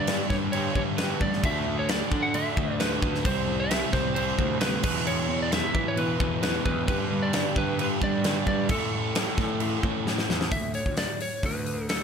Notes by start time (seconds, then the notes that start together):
Already playing: G2 D5
0.07 G2 D3 G3, snare, crash
0.30 G2 D3 G3 C#5, kick, snare
0.52 G2 D3 G3 C#5, crash
0.75 G2 D3 G3 C#5, kick
0.98 G2 D3 G3 B4, snare, crash
1.21 A1 G2 D3 G3 D5, kick
1.33 snare
1.44 D2 D3 A3 D4 E5, kick, crash
1.67 D3 A3 D4
1.79 C#5
1.89 D3 A3 D4 D5, snare, crash
2.11 D3 A3 D4, kick
2.23 F#5
2.34 D3 A3 D4 E5, crash
2.57 D2 D3 A3 D4, kick
2.79 D3 A3 D4 B4, snare, crash
3.02 D2 D3 A3 D4, kick
3.15 snare
3.25 C2 C3 G3 C4 C5, kick, crash
3.48 C3 G3 C4
3.60 E5
3.70 C3 G3 C4, snare, crash
3.93 C2 C3 G3 C4 C5, kick, snare
4.15 C3 G3 C4 C5, crash
4.38 D2 C3 G3 C4, kick
4.60 C3 G3 C4 B4, snare, crash
4.83 E2 B2 E3 B4, kick, crash
4.96 snare
5.06 E2 B2 E3 C#5, crash
5.29 E2 B2 E3
5.42 D5
5.52 E2 B2 E3 E5, snare, crash
5.74 E2 B2 E3, kick
5.88 C#5
5.96 E2 B2 E3 B4, crash
6.20 E2 B2 E3, kick
6.43 E2 B2 E3 B4, snare, crash
6.65 E2 B2 E3 B4, kick
6.88 G2 D3 G3 B4, kick, crash
7.12 G2 D3 G3
7.22 D5
7.33 G2 D3 G3, snare, crash
7.56 G2 D3 G3 B4, kick
7.79 G2 D3 G3 B4, crash
8.02 G2 D3 G3 D5, kick
8.24 G2 D3 G3, snare, crash
8.47 G2 D3 G3 D5, kick
8.69 A2 E3 A3 A4, kick, crash
8.93 A2 E3 A3
9.15 A2 E3 A3, snare, crash
9.38 A2 E3 A3, kick, snare
9.60 A2 E3 A3, crash
9.83 A2 E3 A3, kick
10.07 A2 E3 A3, snare
10.18 snare
10.30 E2 A2 E3 A3, snare
10.41 snare
10.52 D2 E5, kick, open hi-hat
10.74 C#5, open hi-hat
10.86 D2, kick
10.97 D5, snare, open hi-hat
11.20 C#5, open hi-hat
11.43 D2 B4, kick, open hi-hat
11.66 open hi-hat
11.89 A4, snare, open hi-hat